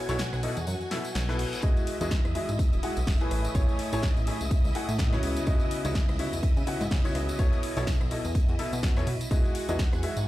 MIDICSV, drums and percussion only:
0, 0, Header, 1, 2, 480
1, 0, Start_track
1, 0, Key_signature, 4, "major"
1, 0, Tempo, 480000
1, 1630, Time_signature, 4, 2, 24, 8
1, 10279, End_track
2, 0, Start_track
2, 0, Title_t, "Drums"
2, 88, Note_on_c, 9, 38, 55
2, 88, Note_on_c, 9, 46, 60
2, 89, Note_on_c, 9, 54, 85
2, 187, Note_off_c, 9, 54, 0
2, 187, Note_on_c, 9, 54, 67
2, 188, Note_off_c, 9, 38, 0
2, 188, Note_off_c, 9, 46, 0
2, 189, Note_on_c, 9, 38, 120
2, 190, Note_on_c, 9, 42, 95
2, 191, Note_off_c, 9, 42, 0
2, 191, Note_on_c, 9, 42, 54
2, 193, Note_off_c, 9, 38, 0
2, 193, Note_on_c, 9, 38, 113
2, 287, Note_off_c, 9, 54, 0
2, 291, Note_off_c, 9, 42, 0
2, 293, Note_off_c, 9, 38, 0
2, 329, Note_on_c, 9, 37, 80
2, 329, Note_on_c, 9, 42, 28
2, 336, Note_on_c, 9, 54, 40
2, 429, Note_off_c, 9, 37, 0
2, 429, Note_off_c, 9, 42, 0
2, 430, Note_on_c, 9, 46, 103
2, 433, Note_on_c, 9, 42, 67
2, 436, Note_off_c, 9, 54, 0
2, 530, Note_off_c, 9, 46, 0
2, 533, Note_off_c, 9, 42, 0
2, 567, Note_on_c, 9, 54, 69
2, 568, Note_on_c, 9, 42, 53
2, 667, Note_off_c, 9, 54, 0
2, 668, Note_off_c, 9, 42, 0
2, 668, Note_on_c, 9, 54, 64
2, 671, Note_on_c, 9, 42, 59
2, 672, Note_off_c, 9, 42, 0
2, 672, Note_on_c, 9, 42, 81
2, 768, Note_off_c, 9, 54, 0
2, 772, Note_off_c, 9, 42, 0
2, 808, Note_on_c, 9, 42, 28
2, 813, Note_on_c, 9, 54, 37
2, 908, Note_off_c, 9, 42, 0
2, 911, Note_on_c, 9, 46, 100
2, 913, Note_off_c, 9, 54, 0
2, 913, Note_on_c, 9, 38, 63
2, 916, Note_on_c, 9, 42, 74
2, 918, Note_off_c, 9, 38, 0
2, 918, Note_on_c, 9, 38, 101
2, 1011, Note_off_c, 9, 46, 0
2, 1016, Note_off_c, 9, 42, 0
2, 1018, Note_off_c, 9, 38, 0
2, 1045, Note_on_c, 9, 54, 69
2, 1049, Note_on_c, 9, 42, 55
2, 1145, Note_off_c, 9, 54, 0
2, 1148, Note_on_c, 9, 38, 105
2, 1149, Note_off_c, 9, 42, 0
2, 1150, Note_on_c, 9, 54, 66
2, 1151, Note_on_c, 9, 42, 51
2, 1153, Note_off_c, 9, 42, 0
2, 1153, Note_on_c, 9, 42, 74
2, 1154, Note_off_c, 9, 38, 0
2, 1154, Note_on_c, 9, 38, 120
2, 1251, Note_off_c, 9, 54, 0
2, 1253, Note_off_c, 9, 42, 0
2, 1254, Note_off_c, 9, 38, 0
2, 1289, Note_on_c, 9, 37, 80
2, 1289, Note_on_c, 9, 42, 27
2, 1293, Note_on_c, 9, 38, 54
2, 1293, Note_on_c, 9, 54, 36
2, 1389, Note_off_c, 9, 37, 0
2, 1389, Note_off_c, 9, 42, 0
2, 1391, Note_on_c, 9, 42, 64
2, 1391, Note_on_c, 9, 46, 98
2, 1393, Note_off_c, 9, 38, 0
2, 1393, Note_off_c, 9, 54, 0
2, 1491, Note_off_c, 9, 42, 0
2, 1491, Note_off_c, 9, 46, 0
2, 1529, Note_on_c, 9, 42, 58
2, 1537, Note_on_c, 9, 54, 75
2, 1623, Note_off_c, 9, 54, 0
2, 1623, Note_on_c, 9, 54, 65
2, 1629, Note_off_c, 9, 42, 0
2, 1630, Note_on_c, 9, 42, 84
2, 1631, Note_on_c, 9, 36, 120
2, 1632, Note_off_c, 9, 42, 0
2, 1632, Note_on_c, 9, 42, 57
2, 1723, Note_off_c, 9, 54, 0
2, 1731, Note_off_c, 9, 36, 0
2, 1732, Note_off_c, 9, 42, 0
2, 1768, Note_on_c, 9, 42, 29
2, 1770, Note_on_c, 9, 54, 39
2, 1867, Note_off_c, 9, 42, 0
2, 1867, Note_on_c, 9, 42, 70
2, 1870, Note_off_c, 9, 54, 0
2, 1871, Note_on_c, 9, 46, 107
2, 1967, Note_off_c, 9, 42, 0
2, 1971, Note_off_c, 9, 46, 0
2, 2009, Note_on_c, 9, 42, 57
2, 2009, Note_on_c, 9, 54, 75
2, 2107, Note_on_c, 9, 38, 127
2, 2109, Note_off_c, 9, 42, 0
2, 2109, Note_off_c, 9, 54, 0
2, 2110, Note_on_c, 9, 36, 107
2, 2111, Note_on_c, 9, 42, 53
2, 2113, Note_off_c, 9, 42, 0
2, 2113, Note_on_c, 9, 42, 94
2, 2114, Note_off_c, 9, 38, 0
2, 2114, Note_on_c, 9, 38, 112
2, 2210, Note_off_c, 9, 36, 0
2, 2213, Note_off_c, 9, 42, 0
2, 2214, Note_off_c, 9, 38, 0
2, 2250, Note_on_c, 9, 37, 82
2, 2250, Note_on_c, 9, 42, 28
2, 2250, Note_on_c, 9, 54, 36
2, 2350, Note_off_c, 9, 37, 0
2, 2350, Note_off_c, 9, 42, 0
2, 2350, Note_off_c, 9, 54, 0
2, 2351, Note_on_c, 9, 46, 101
2, 2352, Note_on_c, 9, 42, 67
2, 2451, Note_off_c, 9, 46, 0
2, 2452, Note_off_c, 9, 42, 0
2, 2488, Note_on_c, 9, 54, 72
2, 2489, Note_on_c, 9, 42, 56
2, 2589, Note_off_c, 9, 42, 0
2, 2589, Note_off_c, 9, 54, 0
2, 2590, Note_on_c, 9, 36, 122
2, 2591, Note_on_c, 9, 42, 60
2, 2593, Note_off_c, 9, 42, 0
2, 2593, Note_on_c, 9, 42, 92
2, 2598, Note_on_c, 9, 54, 70
2, 2690, Note_off_c, 9, 36, 0
2, 2693, Note_off_c, 9, 42, 0
2, 2698, Note_off_c, 9, 54, 0
2, 2729, Note_on_c, 9, 42, 29
2, 2731, Note_on_c, 9, 54, 43
2, 2828, Note_off_c, 9, 42, 0
2, 2828, Note_on_c, 9, 42, 68
2, 2831, Note_off_c, 9, 54, 0
2, 2831, Note_on_c, 9, 46, 105
2, 2928, Note_off_c, 9, 42, 0
2, 2931, Note_off_c, 9, 46, 0
2, 2966, Note_on_c, 9, 54, 72
2, 2969, Note_on_c, 9, 42, 54
2, 3066, Note_off_c, 9, 54, 0
2, 3069, Note_off_c, 9, 42, 0
2, 3069, Note_on_c, 9, 38, 117
2, 3070, Note_on_c, 9, 36, 110
2, 3071, Note_on_c, 9, 42, 53
2, 3071, Note_on_c, 9, 54, 60
2, 3073, Note_off_c, 9, 38, 0
2, 3073, Note_on_c, 9, 38, 120
2, 3074, Note_on_c, 9, 46, 82
2, 3170, Note_off_c, 9, 36, 0
2, 3171, Note_off_c, 9, 42, 0
2, 3171, Note_off_c, 9, 54, 0
2, 3173, Note_off_c, 9, 38, 0
2, 3174, Note_off_c, 9, 46, 0
2, 3204, Note_on_c, 9, 54, 37
2, 3209, Note_on_c, 9, 42, 28
2, 3304, Note_off_c, 9, 54, 0
2, 3309, Note_off_c, 9, 42, 0
2, 3310, Note_on_c, 9, 42, 70
2, 3311, Note_on_c, 9, 37, 75
2, 3311, Note_on_c, 9, 46, 103
2, 3410, Note_off_c, 9, 42, 0
2, 3411, Note_off_c, 9, 37, 0
2, 3411, Note_off_c, 9, 46, 0
2, 3446, Note_on_c, 9, 54, 78
2, 3449, Note_on_c, 9, 42, 55
2, 3546, Note_off_c, 9, 54, 0
2, 3547, Note_on_c, 9, 54, 73
2, 3549, Note_off_c, 9, 42, 0
2, 3550, Note_on_c, 9, 36, 127
2, 3551, Note_on_c, 9, 42, 57
2, 3552, Note_off_c, 9, 42, 0
2, 3552, Note_on_c, 9, 42, 78
2, 3647, Note_off_c, 9, 54, 0
2, 3650, Note_off_c, 9, 36, 0
2, 3652, Note_off_c, 9, 42, 0
2, 3688, Note_on_c, 9, 42, 29
2, 3689, Note_on_c, 9, 54, 39
2, 3788, Note_off_c, 9, 42, 0
2, 3789, Note_off_c, 9, 54, 0
2, 3790, Note_on_c, 9, 46, 119
2, 3890, Note_off_c, 9, 46, 0
2, 3926, Note_on_c, 9, 54, 88
2, 3929, Note_on_c, 9, 46, 69
2, 4022, Note_on_c, 9, 38, 111
2, 4026, Note_off_c, 9, 54, 0
2, 4029, Note_off_c, 9, 46, 0
2, 4030, Note_on_c, 9, 36, 109
2, 4030, Note_on_c, 9, 42, 51
2, 4033, Note_off_c, 9, 38, 0
2, 4033, Note_on_c, 9, 38, 117
2, 4034, Note_off_c, 9, 42, 0
2, 4034, Note_on_c, 9, 42, 82
2, 4130, Note_off_c, 9, 36, 0
2, 4133, Note_off_c, 9, 38, 0
2, 4134, Note_off_c, 9, 42, 0
2, 4166, Note_on_c, 9, 54, 43
2, 4168, Note_on_c, 9, 42, 27
2, 4266, Note_off_c, 9, 54, 0
2, 4268, Note_off_c, 9, 42, 0
2, 4270, Note_on_c, 9, 42, 65
2, 4270, Note_on_c, 9, 46, 112
2, 4370, Note_off_c, 9, 42, 0
2, 4370, Note_off_c, 9, 46, 0
2, 4408, Note_on_c, 9, 42, 52
2, 4408, Note_on_c, 9, 54, 84
2, 4507, Note_off_c, 9, 54, 0
2, 4508, Note_off_c, 9, 42, 0
2, 4510, Note_on_c, 9, 36, 127
2, 4510, Note_on_c, 9, 42, 54
2, 4511, Note_on_c, 9, 54, 73
2, 4610, Note_off_c, 9, 36, 0
2, 4610, Note_off_c, 9, 42, 0
2, 4611, Note_off_c, 9, 54, 0
2, 4645, Note_on_c, 9, 54, 46
2, 4648, Note_on_c, 9, 42, 27
2, 4745, Note_off_c, 9, 54, 0
2, 4748, Note_off_c, 9, 42, 0
2, 4750, Note_on_c, 9, 46, 108
2, 4760, Note_on_c, 9, 42, 70
2, 4850, Note_off_c, 9, 46, 0
2, 4860, Note_off_c, 9, 42, 0
2, 4887, Note_on_c, 9, 54, 88
2, 4888, Note_on_c, 9, 42, 52
2, 4983, Note_on_c, 9, 38, 116
2, 4987, Note_off_c, 9, 54, 0
2, 4988, Note_off_c, 9, 42, 0
2, 4990, Note_on_c, 9, 36, 109
2, 4990, Note_on_c, 9, 42, 53
2, 4992, Note_off_c, 9, 38, 0
2, 4992, Note_off_c, 9, 42, 0
2, 4992, Note_on_c, 9, 38, 117
2, 4992, Note_on_c, 9, 42, 87
2, 4992, Note_on_c, 9, 54, 74
2, 5090, Note_off_c, 9, 36, 0
2, 5092, Note_off_c, 9, 38, 0
2, 5092, Note_off_c, 9, 42, 0
2, 5092, Note_off_c, 9, 54, 0
2, 5126, Note_on_c, 9, 38, 58
2, 5126, Note_on_c, 9, 54, 37
2, 5128, Note_on_c, 9, 37, 74
2, 5128, Note_on_c, 9, 42, 26
2, 5226, Note_off_c, 9, 38, 0
2, 5226, Note_off_c, 9, 54, 0
2, 5228, Note_off_c, 9, 37, 0
2, 5228, Note_off_c, 9, 42, 0
2, 5230, Note_on_c, 9, 42, 68
2, 5230, Note_on_c, 9, 46, 113
2, 5329, Note_off_c, 9, 42, 0
2, 5329, Note_off_c, 9, 46, 0
2, 5364, Note_on_c, 9, 54, 86
2, 5368, Note_on_c, 9, 42, 54
2, 5464, Note_off_c, 9, 54, 0
2, 5465, Note_on_c, 9, 54, 79
2, 5468, Note_off_c, 9, 42, 0
2, 5470, Note_on_c, 9, 36, 127
2, 5470, Note_on_c, 9, 42, 54
2, 5472, Note_off_c, 9, 42, 0
2, 5472, Note_on_c, 9, 42, 88
2, 5565, Note_off_c, 9, 54, 0
2, 5570, Note_off_c, 9, 36, 0
2, 5572, Note_off_c, 9, 42, 0
2, 5595, Note_on_c, 9, 54, 42
2, 5608, Note_on_c, 9, 42, 29
2, 5695, Note_off_c, 9, 54, 0
2, 5708, Note_off_c, 9, 42, 0
2, 5708, Note_on_c, 9, 42, 69
2, 5710, Note_on_c, 9, 46, 113
2, 5807, Note_off_c, 9, 42, 0
2, 5810, Note_off_c, 9, 46, 0
2, 5847, Note_on_c, 9, 54, 84
2, 5849, Note_on_c, 9, 42, 54
2, 5947, Note_off_c, 9, 54, 0
2, 5949, Note_off_c, 9, 42, 0
2, 5949, Note_on_c, 9, 38, 117
2, 5950, Note_on_c, 9, 36, 113
2, 5950, Note_on_c, 9, 42, 91
2, 5951, Note_off_c, 9, 42, 0
2, 5951, Note_on_c, 9, 42, 49
2, 5954, Note_off_c, 9, 38, 0
2, 5954, Note_on_c, 9, 38, 116
2, 6050, Note_off_c, 9, 36, 0
2, 6051, Note_off_c, 9, 42, 0
2, 6054, Note_off_c, 9, 38, 0
2, 6089, Note_on_c, 9, 37, 83
2, 6089, Note_on_c, 9, 42, 27
2, 6089, Note_on_c, 9, 54, 42
2, 6189, Note_off_c, 9, 37, 0
2, 6189, Note_off_c, 9, 42, 0
2, 6189, Note_off_c, 9, 54, 0
2, 6191, Note_on_c, 9, 42, 71
2, 6192, Note_on_c, 9, 46, 109
2, 6291, Note_off_c, 9, 42, 0
2, 6292, Note_off_c, 9, 46, 0
2, 6330, Note_on_c, 9, 42, 51
2, 6333, Note_on_c, 9, 54, 90
2, 6425, Note_off_c, 9, 42, 0
2, 6425, Note_on_c, 9, 42, 83
2, 6430, Note_on_c, 9, 36, 127
2, 6432, Note_off_c, 9, 42, 0
2, 6432, Note_on_c, 9, 42, 55
2, 6433, Note_off_c, 9, 54, 0
2, 6434, Note_on_c, 9, 54, 62
2, 6530, Note_off_c, 9, 36, 0
2, 6532, Note_off_c, 9, 42, 0
2, 6534, Note_off_c, 9, 54, 0
2, 6567, Note_on_c, 9, 54, 44
2, 6570, Note_on_c, 9, 42, 26
2, 6667, Note_off_c, 9, 54, 0
2, 6670, Note_off_c, 9, 42, 0
2, 6671, Note_on_c, 9, 46, 114
2, 6674, Note_on_c, 9, 42, 74
2, 6771, Note_off_c, 9, 46, 0
2, 6774, Note_off_c, 9, 42, 0
2, 6809, Note_on_c, 9, 42, 50
2, 6812, Note_on_c, 9, 54, 79
2, 6909, Note_off_c, 9, 42, 0
2, 6910, Note_on_c, 9, 36, 112
2, 6911, Note_on_c, 9, 42, 52
2, 6912, Note_off_c, 9, 54, 0
2, 6914, Note_on_c, 9, 38, 123
2, 6914, Note_on_c, 9, 46, 85
2, 6914, Note_on_c, 9, 54, 77
2, 6916, Note_off_c, 9, 38, 0
2, 6916, Note_on_c, 9, 38, 117
2, 7010, Note_off_c, 9, 36, 0
2, 7011, Note_off_c, 9, 42, 0
2, 7014, Note_off_c, 9, 46, 0
2, 7014, Note_off_c, 9, 54, 0
2, 7016, Note_off_c, 9, 38, 0
2, 7048, Note_on_c, 9, 54, 44
2, 7050, Note_on_c, 9, 42, 27
2, 7148, Note_off_c, 9, 54, 0
2, 7150, Note_off_c, 9, 42, 0
2, 7150, Note_on_c, 9, 42, 65
2, 7151, Note_on_c, 9, 37, 74
2, 7151, Note_on_c, 9, 46, 107
2, 7250, Note_off_c, 9, 42, 0
2, 7251, Note_off_c, 9, 37, 0
2, 7251, Note_off_c, 9, 46, 0
2, 7289, Note_on_c, 9, 42, 52
2, 7291, Note_on_c, 9, 54, 94
2, 7386, Note_off_c, 9, 54, 0
2, 7386, Note_on_c, 9, 54, 75
2, 7389, Note_off_c, 9, 42, 0
2, 7390, Note_on_c, 9, 36, 122
2, 7390, Note_on_c, 9, 42, 83
2, 7391, Note_off_c, 9, 42, 0
2, 7391, Note_on_c, 9, 42, 52
2, 7486, Note_off_c, 9, 54, 0
2, 7490, Note_off_c, 9, 36, 0
2, 7491, Note_off_c, 9, 42, 0
2, 7527, Note_on_c, 9, 54, 41
2, 7529, Note_on_c, 9, 42, 27
2, 7627, Note_off_c, 9, 54, 0
2, 7629, Note_off_c, 9, 42, 0
2, 7630, Note_on_c, 9, 42, 73
2, 7630, Note_on_c, 9, 46, 117
2, 7730, Note_off_c, 9, 42, 0
2, 7730, Note_off_c, 9, 46, 0
2, 7767, Note_on_c, 9, 38, 58
2, 7768, Note_on_c, 9, 46, 65
2, 7768, Note_on_c, 9, 54, 77
2, 7867, Note_off_c, 9, 38, 0
2, 7868, Note_off_c, 9, 46, 0
2, 7868, Note_off_c, 9, 54, 0
2, 7870, Note_on_c, 9, 36, 112
2, 7870, Note_on_c, 9, 38, 120
2, 7870, Note_on_c, 9, 42, 49
2, 7870, Note_on_c, 9, 54, 80
2, 7873, Note_off_c, 9, 38, 0
2, 7873, Note_on_c, 9, 38, 117
2, 7874, Note_off_c, 9, 42, 0
2, 7874, Note_on_c, 9, 42, 84
2, 7970, Note_off_c, 9, 36, 0
2, 7970, Note_off_c, 9, 54, 0
2, 7973, Note_off_c, 9, 38, 0
2, 7974, Note_off_c, 9, 42, 0
2, 8008, Note_on_c, 9, 37, 85
2, 8008, Note_on_c, 9, 42, 26
2, 8009, Note_on_c, 9, 54, 39
2, 8108, Note_off_c, 9, 37, 0
2, 8108, Note_off_c, 9, 42, 0
2, 8109, Note_off_c, 9, 54, 0
2, 8111, Note_on_c, 9, 46, 103
2, 8114, Note_on_c, 9, 42, 64
2, 8211, Note_off_c, 9, 46, 0
2, 8214, Note_off_c, 9, 42, 0
2, 8248, Note_on_c, 9, 42, 50
2, 8248, Note_on_c, 9, 54, 74
2, 8348, Note_off_c, 9, 42, 0
2, 8348, Note_off_c, 9, 54, 0
2, 8350, Note_on_c, 9, 36, 126
2, 8350, Note_on_c, 9, 54, 73
2, 8351, Note_on_c, 9, 42, 54
2, 8352, Note_off_c, 9, 42, 0
2, 8352, Note_on_c, 9, 42, 79
2, 8450, Note_off_c, 9, 36, 0
2, 8450, Note_off_c, 9, 54, 0
2, 8452, Note_off_c, 9, 42, 0
2, 8484, Note_on_c, 9, 54, 41
2, 8489, Note_on_c, 9, 42, 26
2, 8584, Note_off_c, 9, 54, 0
2, 8589, Note_off_c, 9, 42, 0
2, 8590, Note_on_c, 9, 46, 103
2, 8592, Note_on_c, 9, 42, 72
2, 8690, Note_off_c, 9, 46, 0
2, 8692, Note_off_c, 9, 42, 0
2, 8727, Note_on_c, 9, 42, 49
2, 8730, Note_on_c, 9, 54, 85
2, 8827, Note_off_c, 9, 42, 0
2, 8830, Note_off_c, 9, 54, 0
2, 8830, Note_on_c, 9, 36, 104
2, 8830, Note_on_c, 9, 38, 127
2, 8830, Note_on_c, 9, 42, 96
2, 8832, Note_off_c, 9, 38, 0
2, 8832, Note_on_c, 9, 38, 119
2, 8930, Note_off_c, 9, 36, 0
2, 8930, Note_off_c, 9, 42, 0
2, 8932, Note_off_c, 9, 38, 0
2, 8963, Note_on_c, 9, 54, 41
2, 8965, Note_on_c, 9, 38, 48
2, 8968, Note_on_c, 9, 37, 80
2, 8968, Note_on_c, 9, 42, 27
2, 9063, Note_off_c, 9, 54, 0
2, 9065, Note_off_c, 9, 38, 0
2, 9068, Note_off_c, 9, 37, 0
2, 9068, Note_off_c, 9, 42, 0
2, 9069, Note_on_c, 9, 46, 111
2, 9070, Note_on_c, 9, 42, 77
2, 9169, Note_off_c, 9, 46, 0
2, 9170, Note_off_c, 9, 42, 0
2, 9208, Note_on_c, 9, 42, 52
2, 9208, Note_on_c, 9, 54, 87
2, 9308, Note_off_c, 9, 42, 0
2, 9308, Note_off_c, 9, 54, 0
2, 9310, Note_on_c, 9, 36, 126
2, 9310, Note_on_c, 9, 42, 51
2, 9315, Note_on_c, 9, 54, 77
2, 9410, Note_off_c, 9, 36, 0
2, 9410, Note_off_c, 9, 42, 0
2, 9415, Note_off_c, 9, 54, 0
2, 9448, Note_on_c, 9, 42, 27
2, 9454, Note_on_c, 9, 54, 40
2, 9548, Note_off_c, 9, 42, 0
2, 9548, Note_on_c, 9, 42, 75
2, 9549, Note_on_c, 9, 46, 113
2, 9554, Note_off_c, 9, 54, 0
2, 9648, Note_off_c, 9, 42, 0
2, 9649, Note_off_c, 9, 46, 0
2, 9688, Note_on_c, 9, 42, 52
2, 9688, Note_on_c, 9, 54, 90
2, 9788, Note_off_c, 9, 42, 0
2, 9788, Note_off_c, 9, 54, 0
2, 9789, Note_on_c, 9, 36, 109
2, 9790, Note_on_c, 9, 38, 123
2, 9790, Note_on_c, 9, 42, 85
2, 9792, Note_off_c, 9, 38, 0
2, 9792, Note_on_c, 9, 38, 110
2, 9793, Note_on_c, 9, 54, 68
2, 9889, Note_off_c, 9, 36, 0
2, 9890, Note_off_c, 9, 42, 0
2, 9892, Note_off_c, 9, 38, 0
2, 9893, Note_off_c, 9, 54, 0
2, 9928, Note_on_c, 9, 37, 94
2, 9928, Note_on_c, 9, 42, 26
2, 9931, Note_on_c, 9, 54, 43
2, 10028, Note_off_c, 9, 37, 0
2, 10028, Note_off_c, 9, 42, 0
2, 10028, Note_on_c, 9, 42, 67
2, 10030, Note_on_c, 9, 46, 104
2, 10031, Note_off_c, 9, 54, 0
2, 10128, Note_off_c, 9, 42, 0
2, 10130, Note_off_c, 9, 46, 0
2, 10166, Note_on_c, 9, 54, 84
2, 10168, Note_on_c, 9, 42, 50
2, 10266, Note_off_c, 9, 54, 0
2, 10268, Note_off_c, 9, 42, 0
2, 10279, End_track
0, 0, End_of_file